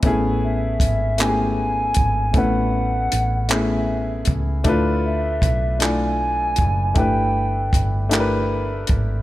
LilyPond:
<<
  \new Staff \with { instrumentName = "Soft synth lead" } { \time 6/8 \key a \major \tempo 4. = 52 r8 e''4 gis''4. | fis''4. e''4 r8 | r8 e''4 gis''4. | g''4. r4. | }
  \new Staff \with { instrumentName = "Grand piano" } { \time 6/8 \key a \major <a b cis' e' gis'>4. <a b cis' e' g' gis'>4. | <a b cis' e' b'>4. <a b cis' e' gis'>4. | <a d' e' f' b'>4. <a d' e' f' d''>4. | <a d' e' g' b'>4. <a d' e' g' bes' b'>4. | }
  \new Staff \with { instrumentName = "Fingered electric bass" } { \clef bass \time 6/8 \key a \major a,,4 gis,,4. gis,,8 | a,,4 a,,4. cis,8 | d,4 b,,4. fis,,8 | g,,4 g,,4. gis,,8 | }
  \new DrumStaff \with { instrumentName = "Drums" } \drummode { \time 6/8 <hh bd>4 <hh bd>8 <hc hh>4 <hh bd>8 | <hh bd>4 hh8 <hc hh>4 <hh bd>8 | <hh bd>4 <hh bd>8 <hc hh>4 <hh bd>8 | <hh bd>4 <hh bd>8 <hc hh>4 <hh bd>8 | }
>>